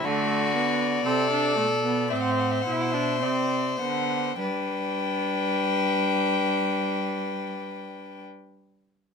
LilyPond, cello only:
\new Staff \with { instrumentName = "Cello" } { \clef bass \time 4/4 \key g \major \tempo 4 = 50 d4 c8 b,8 a,8 b,8 c8 d8 | g1 | }